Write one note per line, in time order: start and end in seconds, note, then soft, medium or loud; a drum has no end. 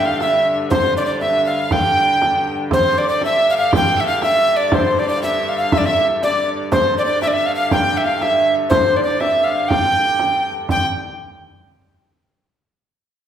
0.00 2.70 G2 medium
0.00 2.71 D3 medium
0.00 0.22 F5 medium
0.05 0.21 F5 loud
0.20 0.54 E5 medium
0.20 0.48 E5 medium
0.20 frame drum medium
0.38 frame drum soft
0.70 0.94 C5 loud
0.70 0.98 C5 medium
0.70 frame drum medium
0.96 0.99 D5 medium
0.96 1.02 D5 medium
0.96 1.04 D5 medium
1.02 1.10 D5 medium
1.02 1.20 D5 medium
1.20 1.44 E5 medium
1.20 1.48 E5 medium
1.20 frame drum medium
1.38 frame drum soft
1.46 1.74 F5 loud
1.46 1.73 F5 medium
1.71 2.55 G5 medium
1.71 2.55 G5 loud
1.71 frame drum medium
2.22 frame drum medium
2.38 frame drum soft
2.55 frame drum soft
2.70 6.72 G2 medium
2.70 6.72 D3 medium
2.70 3.06 C5 medium
2.70 3.00 C5 loud
2.70 frame drum medium
2.98 3.06 D5 medium
3.05 3.20 D5 medium
3.05 3.23 D5 medium
3.21 3.56 E5 medium
3.21 frame drum medium
3.25 3.47 E5 loud
3.39 frame drum soft
3.50 3.56 F5 loud
3.54 3.72 F5 loud
3.71 3.98 G5 loud
3.71 frame drum loud
3.76 4.02 G5 loud
3.96 4.05 E5 medium
3.96 4.07 E5 medium
4.05 4.23 F5 medium
4.05 4.22 F5 loud
4.22 4.38 E5 medium
4.22 4.58 E5 loud
4.22 frame drum medium
4.39 4.55 E5 medium
4.39 frame drum soft
4.56 4.74 D5 medium
4.56 4.76 D5 loud
4.72 5.08 C5 medium
4.72 5.01 C5 loud
4.72 frame drum medium
4.99 5.06 D5 medium
5.07 5.18 D5 medium
5.07 5.22 D5 loud
5.17 5.25 F5 medium
5.23 5.50 E5 loud
5.23 5.58 E5 medium
5.23 frame drum medium
5.40 frame drum soft
5.49 5.56 F5 medium
5.57 5.72 F5 medium
5.57 5.74 F5 loud
5.72 5.79 E5 loud
5.72 5.84 E5 medium
5.72 frame drum loud
5.78 5.87 D5 medium
5.85 6.04 E5 medium
5.85 6.06 E5 loud
6.22 6.50 D5 loud
6.22 6.57 D5 medium
6.22 frame drum medium
6.72 10.74 G2 medium
6.72 10.74 D3 medium
6.72 6.95 C5 loud
6.72 6.96 C5 medium
6.72 frame drum medium
6.98 7.05 D5 medium
6.98 7.23 D5 medium
7.06 7.21 D5 medium
7.22 7.33 E5 medium
7.22 7.29 E5 loud
7.22 frame drum medium
7.28 7.35 D5 medium
7.33 7.48 E5 medium
7.33 7.47 E5 loud
7.38 frame drum soft
7.46 7.55 F5 loud
7.46 7.53 F5 medium
7.53 7.73 F5 medium
7.53 7.71 F5 loud
7.71 7.98 G5 loud
7.71 7.99 G5 loud
7.71 frame drum medium
7.96 8.03 E5 medium
7.96 8.06 E5 medium
8.04 8.20 F5 medium
8.04 8.24 F5 loud
8.20 8.52 E5 medium
8.20 8.55 E5 loud
8.20 frame drum medium
8.38 frame drum soft
8.70 8.98 C5 loud
8.70 9.03 C5 medium
8.70 frame drum loud
8.96 9.03 D5 medium
9.03 9.22 D5 loud
9.03 9.22 D5 medium
9.20 9.46 E5 loud
9.20 9.50 E5 medium
9.20 frame drum medium
9.38 frame drum soft
9.44 9.70 F5 medium
9.48 9.73 F5 medium
9.68 10.52 G5 loud
9.68 10.54 G5 medium
9.68 frame drum medium
10.19 frame drum medium
10.36 frame drum soft
10.53 frame drum soft
10.69 10.86 G5 medium
10.69 10.86 G5 loud
10.69 frame drum medium